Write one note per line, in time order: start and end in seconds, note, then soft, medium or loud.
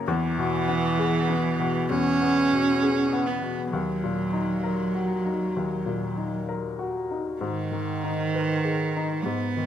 0.00 0.10 F#2 medium
0.00 0.11 C#3 medium
0.00 0.11 A#3 medium
0.00 0.11 A#4 medium
0.00 0.11 C#5 medium
0.07 1.86 E2 medium
0.07 1.91 E3 loud
0.38 0.86 B2 medium
0.68 1.17 B3 medium
0.99 1.48 G#4 medium
1.29 1.78 B3 medium
1.59 2.09 B2 medium
1.90 3.68 E2 medium
1.90 3.28 C#4 loud
2.22 2.69 B3 medium
2.53 3.00 B2 medium
2.82 3.30 G#4 medium
3.13 3.60 B3 medium
3.27 3.71 B3 medium
3.42 3.72 B2 soft
3.71 5.53 D#2 medium
3.71 6.44 F#3 medium
4.04 4.52 A#2 soft
4.33 4.82 D#4 soft
4.64 5.13 A#4 soft
4.95 5.44 F#4 soft
5.26 5.75 D#4 soft
5.57 7.37 D#2 soft
5.86 6.36 A#2 soft
6.17 6.67 D#4 soft
6.49 6.98 A#4 soft
6.79 7.29 F#4 soft
7.11 7.41 D#4 soft
7.41 9.21 G#2 medium
7.41 9.25 D#3 medium
7.72 8.21 D#3 soft
8.04 8.52 D#4 soft
8.34 8.83 B4 soft
8.64 9.13 G#4 soft
8.96 9.45 D#4 soft
9.23 9.66 G#2 soft
9.23 9.66 B3 medium
9.57 9.66 D#3 soft